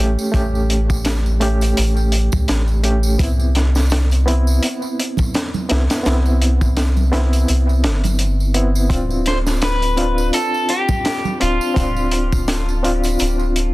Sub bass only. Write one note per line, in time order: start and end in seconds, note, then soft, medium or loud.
0.00 0.16 A1 medium
0.34 1.74 A1 medium
1.78 2.29 A1 medium
2.33 2.47 C#2 medium
2.49 3.17 A1 medium
3.20 4.60 C2 medium
5.71 5.88 C2 medium
6.06 7.46 C2 medium
7.49 7.86 C2 medium
7.85 8.89 G1 medium
8.90 10.31 D1 medium
11.42 11.59 D1 loud
11.77 13.17 D1 loud
13.20 13.72 D1 medium